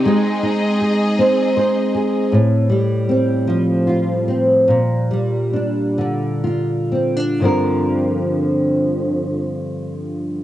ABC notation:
X:1
M:6/8
L:1/16
Q:3/8=48
K:Gm
V:1 name="String section"
[CE_Ae]12 | z12 | z12 | z12 |]
V:2 name="Nylon-string guitar"
_A,2 E2 _A2 C2 c2 A2 | A,,2 G,2 C2 F,2 F2 C2 | B,,2 G,2 D2 D,2 F2 C D | [G,,D,F,CDB]12 |]